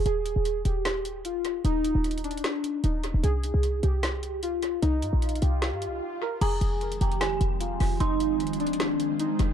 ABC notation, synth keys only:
X:1
M:4/4
L:1/8
Q:1/4=151
K:Fdor
V:1 name="Synth keys"
A3 G3 F2 | E3 D3 E2 | A3 G3 F2 | E3 G4 B |
A3 G3 F2 | E3 D3 E2 |]